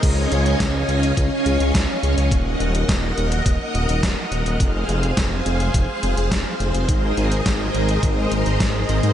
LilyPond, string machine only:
\new Staff \with { instrumentName = "String machine" } { \time 4/4 \key des \major \tempo 4 = 105 << { <des' des'' ees'' aes''>1 | <bes' ges''>1 | <aes' f''>1 | <aes aes' bes' ees''>1 | } \\ { f''1 | ees''1 | c''1~ | c''1 | } >> }